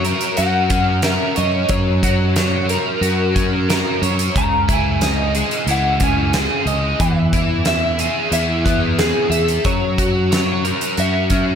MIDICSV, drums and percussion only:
0, 0, Header, 1, 2, 480
1, 0, Start_track
1, 0, Tempo, 662252
1, 1235, Time_signature, 4, 2, 24, 8
1, 8372, End_track
2, 0, Start_track
2, 0, Title_t, "Drums"
2, 33, Note_on_c, 9, 42, 60
2, 106, Note_off_c, 9, 42, 0
2, 150, Note_on_c, 9, 42, 61
2, 222, Note_off_c, 9, 42, 0
2, 267, Note_on_c, 9, 42, 66
2, 340, Note_off_c, 9, 42, 0
2, 507, Note_on_c, 9, 42, 64
2, 510, Note_on_c, 9, 36, 83
2, 579, Note_off_c, 9, 42, 0
2, 583, Note_off_c, 9, 36, 0
2, 742, Note_on_c, 9, 42, 60
2, 746, Note_on_c, 9, 38, 101
2, 814, Note_off_c, 9, 42, 0
2, 819, Note_off_c, 9, 38, 0
2, 985, Note_on_c, 9, 42, 59
2, 1058, Note_off_c, 9, 42, 0
2, 1222, Note_on_c, 9, 42, 66
2, 1229, Note_on_c, 9, 36, 109
2, 1295, Note_off_c, 9, 42, 0
2, 1301, Note_off_c, 9, 36, 0
2, 1471, Note_on_c, 9, 36, 78
2, 1473, Note_on_c, 9, 42, 69
2, 1544, Note_off_c, 9, 36, 0
2, 1545, Note_off_c, 9, 42, 0
2, 1710, Note_on_c, 9, 42, 64
2, 1714, Note_on_c, 9, 38, 94
2, 1782, Note_off_c, 9, 42, 0
2, 1786, Note_off_c, 9, 38, 0
2, 1952, Note_on_c, 9, 42, 61
2, 2024, Note_off_c, 9, 42, 0
2, 2194, Note_on_c, 9, 42, 62
2, 2267, Note_off_c, 9, 42, 0
2, 2435, Note_on_c, 9, 36, 89
2, 2435, Note_on_c, 9, 42, 73
2, 2507, Note_off_c, 9, 36, 0
2, 2507, Note_off_c, 9, 42, 0
2, 2680, Note_on_c, 9, 42, 61
2, 2684, Note_on_c, 9, 38, 98
2, 2752, Note_off_c, 9, 42, 0
2, 2756, Note_off_c, 9, 38, 0
2, 2919, Note_on_c, 9, 42, 53
2, 2992, Note_off_c, 9, 42, 0
2, 3037, Note_on_c, 9, 42, 63
2, 3110, Note_off_c, 9, 42, 0
2, 3158, Note_on_c, 9, 36, 106
2, 3160, Note_on_c, 9, 42, 67
2, 3231, Note_off_c, 9, 36, 0
2, 3232, Note_off_c, 9, 42, 0
2, 3397, Note_on_c, 9, 36, 83
2, 3399, Note_on_c, 9, 42, 65
2, 3470, Note_off_c, 9, 36, 0
2, 3472, Note_off_c, 9, 42, 0
2, 3633, Note_on_c, 9, 42, 60
2, 3638, Note_on_c, 9, 38, 84
2, 3706, Note_off_c, 9, 42, 0
2, 3710, Note_off_c, 9, 38, 0
2, 3876, Note_on_c, 9, 42, 62
2, 3948, Note_off_c, 9, 42, 0
2, 3995, Note_on_c, 9, 42, 60
2, 4068, Note_off_c, 9, 42, 0
2, 4113, Note_on_c, 9, 42, 62
2, 4186, Note_off_c, 9, 42, 0
2, 4348, Note_on_c, 9, 42, 60
2, 4354, Note_on_c, 9, 36, 88
2, 4421, Note_off_c, 9, 42, 0
2, 4426, Note_off_c, 9, 36, 0
2, 4590, Note_on_c, 9, 42, 59
2, 4595, Note_on_c, 9, 38, 105
2, 4663, Note_off_c, 9, 42, 0
2, 4667, Note_off_c, 9, 38, 0
2, 4833, Note_on_c, 9, 42, 51
2, 4905, Note_off_c, 9, 42, 0
2, 5073, Note_on_c, 9, 36, 103
2, 5074, Note_on_c, 9, 42, 68
2, 5145, Note_off_c, 9, 36, 0
2, 5146, Note_off_c, 9, 42, 0
2, 5312, Note_on_c, 9, 42, 62
2, 5313, Note_on_c, 9, 36, 79
2, 5385, Note_off_c, 9, 36, 0
2, 5385, Note_off_c, 9, 42, 0
2, 5545, Note_on_c, 9, 42, 61
2, 5550, Note_on_c, 9, 38, 94
2, 5618, Note_off_c, 9, 42, 0
2, 5622, Note_off_c, 9, 38, 0
2, 5790, Note_on_c, 9, 42, 64
2, 5862, Note_off_c, 9, 42, 0
2, 6031, Note_on_c, 9, 42, 67
2, 6103, Note_off_c, 9, 42, 0
2, 6275, Note_on_c, 9, 36, 85
2, 6278, Note_on_c, 9, 42, 72
2, 6347, Note_off_c, 9, 36, 0
2, 6350, Note_off_c, 9, 42, 0
2, 6514, Note_on_c, 9, 42, 60
2, 6518, Note_on_c, 9, 38, 93
2, 6586, Note_off_c, 9, 42, 0
2, 6590, Note_off_c, 9, 38, 0
2, 6754, Note_on_c, 9, 42, 62
2, 6826, Note_off_c, 9, 42, 0
2, 6874, Note_on_c, 9, 42, 61
2, 6946, Note_off_c, 9, 42, 0
2, 6991, Note_on_c, 9, 42, 72
2, 6994, Note_on_c, 9, 36, 104
2, 7064, Note_off_c, 9, 42, 0
2, 7067, Note_off_c, 9, 36, 0
2, 7236, Note_on_c, 9, 36, 83
2, 7237, Note_on_c, 9, 42, 66
2, 7309, Note_off_c, 9, 36, 0
2, 7310, Note_off_c, 9, 42, 0
2, 7481, Note_on_c, 9, 42, 60
2, 7485, Note_on_c, 9, 38, 96
2, 7553, Note_off_c, 9, 42, 0
2, 7557, Note_off_c, 9, 38, 0
2, 7718, Note_on_c, 9, 42, 57
2, 7790, Note_off_c, 9, 42, 0
2, 7837, Note_on_c, 9, 42, 62
2, 7909, Note_off_c, 9, 42, 0
2, 7954, Note_on_c, 9, 42, 61
2, 8026, Note_off_c, 9, 42, 0
2, 8189, Note_on_c, 9, 42, 62
2, 8193, Note_on_c, 9, 36, 86
2, 8262, Note_off_c, 9, 42, 0
2, 8266, Note_off_c, 9, 36, 0
2, 8372, End_track
0, 0, End_of_file